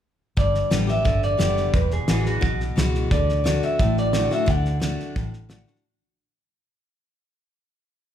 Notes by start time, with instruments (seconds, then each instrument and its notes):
0.37 fingered electric bass G1, steel-string acoustic guitar G2, clean electric guitar D5, kick, snare
0.54 snare
0.70 fingered electric bass A1, steel-string acoustic guitar D3 G3 B3 G4, snare, hi-hat pedal
0.87 steel-string acoustic guitar B3 G4, clean electric guitar E5, snare
1.05 fingered electric bass G1, steel-string acoustic guitar D3, kick, snare
1.22 clean electric guitar D5, snare
1.38 fingered electric bass F#1, steel-string acoustic guitar D3 G3 B3 G4, snare, hi-hat pedal
1.57 snare
1.73 fingered electric bass E1, steel-string acoustic guitar E2, clean electric guitar B4, kick, snare
1.90 clean electric guitar G#4, snare
2.08 fingered electric bass A1, steel-string acoustic guitar E3 G#3 B3 F#4, clean electric guitar G#4, snare, hi-hat pedal
2.26 clean electric guitar F#4, snare
2.41 fingered electric bass B1, steel-string acoustic guitar B2, kick, snare
2.60 snare
2.76 fingered electric bass C#2, steel-string acoustic guitar E3 G#3 B3 F#4, snare, hi-hat pedal
2.95 snare
3.11 fingered electric bass D2, steel-string acoustic guitar D3, clean electric guitar D5, kick, snare
3.29 snare
3.44 steel-string acoustic guitar D3 A3 D4 F#4, snare, hi-hat pedal
3.62 clean electric guitar E5, snare
3.79 fingered electric bass A1, steel-string acoustic guitar A2, kick, snare
3.97 clean electric guitar D5, snare
4.13 steel-string acoustic guitar D3 A3 D4 F#4, snare, hi-hat pedal
4.31 steel-string acoustic guitar D4 F#4, clean electric guitar E5, snare
4.46 fingered electric bass D2, steel-string acoustic guitar D3, clean electric guitar F#5, kick, snare
4.65 snare
4.80 steel-string acoustic guitar D3 A3 D4 F#4, snare, hi-hat pedal
4.99 snare
5.16 fingered electric bass A1, steel-string acoustic guitar A2, kick, snare
5.33 snare
5.49 steel-string acoustic guitar D3 A3 D4 F#4, snare, hi-hat pedal
5.67 steel-string acoustic guitar D4 F#4, snare
5.75 snare